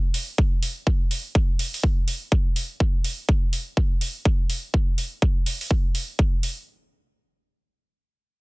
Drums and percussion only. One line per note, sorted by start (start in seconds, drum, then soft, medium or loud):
0.14 open hi-hat loud
0.38 kick loud
0.63 open hi-hat loud
0.87 kick loud
1.11 open hi-hat medium
1.35 kick medium
1.59 open hi-hat loud
1.74 open hi-hat medium
1.83 kick loud
2.08 open hi-hat loud
2.32 kick medium
2.56 open hi-hat loud
2.80 kick loud
3.04 open hi-hat medium
3.29 kick medium
3.53 open hi-hat medium
3.77 kick loud
4.01 open hi-hat loud
4.25 kick medium
4.50 open hi-hat medium
4.74 kick loud
4.98 open hi-hat medium
5.22 kick loud
5.46 open hi-hat loud
5.61 open hi-hat medium
5.71 kick loud
5.95 open hi-hat loud
6.19 kick medium
6.43 open hi-hat medium